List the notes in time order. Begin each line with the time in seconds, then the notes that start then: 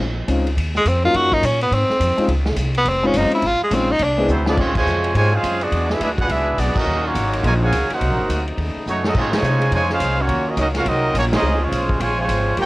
0.00 A#1
0.28 C#2 G#3 C4 C#4 D#4 F4, kick, hi-hat pedal, ride
0.47 ride
0.57 D#2, kick, ride
0.75 G#3, snare
0.85 F2 C4, kick, hi-hat pedal, ride
1.04 F#3 A#3 C#4 D#4 F4
1.14 F#2 F#4, kick, ride
1.32 D#4, kick
1.43 A#2 C#4, kick, hi-hat pedal, ride
1.61 B3, ride
1.71 G#2 C4, kick, ride
1.90 muted upright bass stroke, snare
2.00 F2, kick, hi-hat pedal, ride
2.17 G#3 C4 C#4 D#4 F4, muted upright bass stroke, ride
2.28 C#2, kick, ride
2.46 snare
2.56 C2, kick, hi-hat pedal, ride
2.75 B3, ride
2.85 F1 C4, kick, ride
3.03 G#3 C4 C#4 D#4 F4
3.14 F#1, kick, hi-hat pedal, ride
3.18 D#4
3.32 E4, muted upright bass stroke, ride
3.42 G#1, kick, ride
3.46 F4
3.60 G#3, muted upright bass stroke
3.71 A#1 G#3 C4 C#4 D#4 F4, kick, hi-hat pedal, ride
3.92 D#4
3.99 C2, kick, ride
4.04 D4
4.18 G#3 B3 C4 E4 G#4
4.28 D2 E3 F#3 B3 C4 E4 C5, hi-hat pedal
4.46 G#3 B3 C4 C#4 D4 D#4 E4 F4 G#4 D5, snare
4.57 C#2 C3 F3 G#3 C4 C#4 F4 C#5, kick, crash
4.75 C3 F3 G#3 F4 C5 C#5 G#5, kick, crash
4.86 F2, hi-hat pedal
5.04 ride
5.14 G#2 C3 F3 G#3 F4 C5 C#5 G#5, kick, ride
5.32 G#3 C4 C#4 F4 G#4 C5 F5
5.43 F#2, kick, hi-hat pedal, ride
5.60 G#3 B3 D4 F#4 G#4 D5, ride
5.72 E2 E3 D4 F#4, kick, ride
5.89 G#3 B3 D4 E4 G#4 B4 E5, snare
6.00 D2 G#3 B3 D4 E4 G#4 B4 E5, kick, hi-hat pedal, ride
6.17 B3 D4 F#4 G#4 B4 F#5, kick, ride
6.28 C#2 G#3 B3 D4 E4 G#4 B4 E5, kick, ride
6.57 B1 G#3 B3 D4 F#4 G#4 D5, kick, hi-hat pedal, ride
6.75 F#3 A#3 C#4 D#4 F#4 A#4 D#5, muted upright bass stroke, kick, crash
6.86 D#2 D#3 F#3 C#4 D#4
7.04 F#3 A#3 C#4 F4 F#4 C#5
7.14 G#1, kick, hi-hat pedal, ride
7.33 ride
7.43 A#1 G#3 F4 A#4 C#5 G#5, kick, ride
7.62 A#2 C#3 G#3 F#4 C#5 F5 G#5
7.72 C#2, kick, hi-hat pedal, ride
7.90 A#3 D#4 F#4 A#4 C5 F#5, muted upright bass stroke, ride
8.00 C2 C3 A#3 D#4, kick, ride
8.10 A#1
8.19 F#1
8.29 D2, kick, hi-hat pedal, ride
8.48 ride
8.57 D#2 C#3 A3 B3, kick, ride
8.76 muted upright bass stroke
8.86 F#2 F#3 A3 C#4 D#4 F#4 C#5, hi-hat pedal
9.04 F#3 A3 C#4 D#4 F#4 A4 D#5, snare
9.15 A#2 C#3 F3 G#3 C4 C#4 F4 C#5, kick, crash
9.24 G#2
9.32 F2 C#3 F3 G#3 F4 C5 C#5 G#5, snare, ride
9.42 C3, hi-hat pedal
9.62 ride
9.71 F2 C#3 F3 G#3 F4 C5 C#5 G#5, kick, ride
9.90 G#3 C#4 F4 G#4 C5 F5, snare
10.00 C2, kick, hi-hat pedal, ride
10.18 F#3 A#3 C#4 F4 F#4 C#5
10.28 D#2 D#3 F#3 C#4 F4, kick, ride
10.48 F#3 A#3 C#4 D#4 F#4 A#4 D#5
10.57 C#2 F#3 A#3 C#4 D#4 F#4 A#4 D#5, kick, hi-hat pedal, ride
10.75 A#3 C#4 F4 F#4 A#4 F5, snare, ride
10.86 C2 C3 F#3 A#3 C4 D#4 F#4 A#4 D#5, kick, ride
11.14 A#1 A#3 C#4 D#4 F#4 C#5, kick, hi-hat pedal, ride
11.32 G#3 C4 C#4 D#4 G#4 C5 D#5, snare, ride
11.42 C#2 F3 G#3
11.61 F3 G#3 C#4 F4 C5 C#5
11.72 B1, kick, hi-hat pedal, ride
11.89 kick
12.00 A#1 C3 F3 G#3 F4 C5 C#5 G#5, kick, ride
12.18 C3 F3 G#3 F4 C5 C#5 G#5
12.29 G#1, kick, hi-hat pedal, ride
12.57 G1 G3 A#3 C#4 F4 G4 A#4 C#5 G5, kick, ride